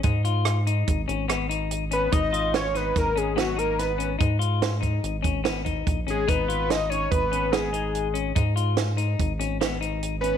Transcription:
<<
  \new Staff \with { instrumentName = "Analog synth lead" } { \time 5/4 \key gis \dorian \tempo 4 = 144 r1 r8 b'8 | dis''4 cis''8 b'8 ais'8 gis'8 fis'8 ais'8 b'8. r16 | r1 r8 gis'8 | b'4 dis''8 cis''8 b'4 gis'4. r8 |
r1 r8 b'8 | }
  \new Staff \with { instrumentName = "Clean electric guitar" } { \time 5/4 \key gis \dorian dis'8 eis'4 dis'4 cis'8 b8 dis'4 cis'8 | dis'8 eis'4 dis'4 cis'8 b8 dis'4 cis'8 | dis'8 eis'4 dis'4 cis'8 b8 dis'4 cis'8 | dis'8 eis'4 dis'4 cis'8 b8 dis'4 cis'8 |
dis'8 eis'4 dis'4 cis'8 b8 dis'4 cis'8 | }
  \new Staff \with { instrumentName = "Analog synth bass" } { \clef bass \time 5/4 \key gis \dorian gis,2 gis,,8 gis,,2~ gis,,8 | gis,,2 gis,,2. | gis,2 gis,,8 gis,,4. ais,,8 gis,,8 | gis,,2 gis,,2. |
gis,2 gis,,8 gis,,2~ gis,,8 | }
  \new DrumStaff \with { instrumentName = "Drums" } \drummode { \time 5/4 <hh bd>8 hh8 <hh ss>8 hh8 <hh bd>8 hh8 <hh ss>8 hh8 hh8 hh8 | <hh bd>8 hh8 <hh sn>8 <hh sn>8 <hh bd sn>8 hh8 <hh sn>8 hh8 <hh sn>8 hh8 | <hh bd>8 hh8 <hh sn>8 <hh bd>8 hh8 <hh bd>8 <hh sn>8 <hh bd>8 <hh bd>8 hh8 | <hh bd>8 hh8 <hh sn>8 hh8 <hh bd>8 hh8 <hh sn>8 hh8 hh8 hh8 |
<hh bd>8 hh8 <hh sn>8 hh8 <hh bd>8 hh8 <hh sn>8 hh8 hh8 hh8 | }
>>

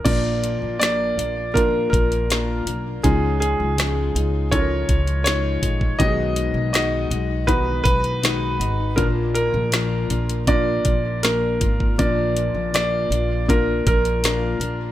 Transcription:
<<
  \new Staff \with { instrumentName = "Grand piano" } { \time 4/4 \key bes \phrygian \tempo 4 = 80 d''4 d''4 bes'8 bes'4. | aes'8 aes'4. des''4 des''4 | dis''4 dis''4 b'8 b'4. | bes'8 bes'4. d''4 bes'4 |
d''4 d''4 bes'8 bes'4. | }
  \new Staff \with { instrumentName = "Felt piano" } { \time 4/4 \key bes \phrygian <bes d' f' bes'>2 <bes d' f' bes'>2 | <des' ees' f' aes'>2 <des' ees' f' a' bes'>2 | <b dis' fis' g' gis'>2 <b dis' fis' b'>2 | <bes d' f' bes'>2 <bes d' f' bes'>2 |
<bes d' f' bes'>2 <bes d' f' bes'>2 | }
  \new Staff \with { instrumentName = "Felt piano" } { \clef bass \time 4/4 \key bes \phrygian <bes, f>4. r2 r8 | <des aes>4. r2 r8 | <b, fis>4. r2 r8 | <bes, f>4. r2 r8 |
<bes, f>4. r2 r8 | }
  \new Staff \with { instrumentName = "Steel-string acoustic guitar" } { \time 4/4 \key bes \phrygian <bes, f bes d' f'>4 <bes, f bes d' f'>8 <bes d' f'>8 <f bes d' f'>4 <bes, f bes d' f'>8 <bes d' f'>8 | <des f aes ees' f'>4 <des f aes ees' f'>8 <aes ees' f'>8 <f aes ees' f'>4 <des f aes ees' f'>8 <aes ees' f'>8 | <b, dis gis dis' fis'>4 <b, dis gis dis' fis'>8 <gis dis' fis'>8 <dis gis fis'>4 <b, dis gis dis' fis'>8 <gis dis' fis'>8 | <bes, f bes d' f'>4 <bes, f bes d' f'>8 <bes d' f'>8 <f bes d' f'>4 <bes, f bes d' f'>8 <bes d' f'>8 |
<bes, f bes d' f'>4 <bes, f bes d' f'>8 <bes d' f'>8 <f bes d' f'>4 <bes, f bes d' f'>8 <bes d' f'>8 | }
  \new Staff \with { instrumentName = "Upright bass" } { \clef bass \time 4/4 \key bes \phrygian bes,,8. bes,,8. bes,,4 bes,,4 ces,8 | des,8. des,8. des,4 des,4 bes,,8 | b,,8. b,,8. b,,4 b,,4 gis,,8 | bes,,8. bes,,8. bes,,4 bes,,4 aes,,8 |
bes,,8. bes,,8. bes,,4 bes,,4 bes,,8 | }
  \new DrumStaff \with { instrumentName = "Drums" } \drummode { \time 4/4 <cymc hh bd>8 hh8 <hh sn>8 hh8 <hh bd>8 <hh bd>16 hh16 <hh sn>8 hh8 | <hh bd>8 hh8 <hh sn>8 hh8 <hh bd>8 <hh bd>16 hh16 <hh sn>8 <hh bd>16 bd16 | <hh bd>8 hh8 <hh sn>8 hh8 <hh bd>8 <hh bd>16 hh16 <hh sn>8 hh8 | <hh bd>8 hh8 <hh sn>8 hh16 hh16 <hh bd>8 <hh bd>8 <hh sn>8 <hh bd>16 bd16 |
<hh bd>8 hh8 <hh sn>8 hh8 <hh bd>8 <hh bd>16 hh16 <hh sn>8 hh8 | }
>>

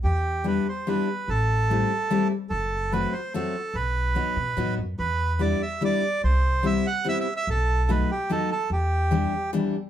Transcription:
<<
  \new Staff \with { instrumentName = "Bandoneon" } { \time 3/4 \key e \minor \tempo 4 = 145 g'4 b'8 c''8 b'4 | a'2~ a'8 r8 | a'4 b'8 c''8 a'4 | b'2~ b'8 r8 |
b'4 d''8 e''8 d''4 | c''4 e''8 fis''8 \tuplet 3/2 { e''8 e''8 e''8 } | a'4 b'8 g'8 a'8 a'8 | g'2 r4 | }
  \new Staff \with { instrumentName = "Steel-string acoustic guitar" } { \time 3/4 \key e \minor r4 <g b d' e'>8 r8 <g b d' e'>8 r8 | r4 <g a c' e'>8 r8 <g a c' e'>8 r8 | r4 <fis a c' fis'>8 r8 <fis a c' fis'>8 r8 | r4 <fis b dis' fis'>8 r8 <fis b dis' fis'>8 r8 |
r4 <g b d' e'>8 r8 <g b d' e'>8 r8 | r4 <g b c' e'>8 r8 <g b c' e'>8 r8 | r4 <fis a b dis'>8 r8 <fis a b dis'>8 r8 | r4 <e g b d'>8 r8 <e g b d'>8 r8 | }
  \new Staff \with { instrumentName = "Upright bass" } { \clef bass \time 3/4 \key e \minor e,2 r4 | a,,2 r4 | fis,,2 r4 | b,,4. b,8 a,8 fis,8 |
e,2 r4 | c,2 r4 | b,,2 r4 | e,2 r4 | }
>>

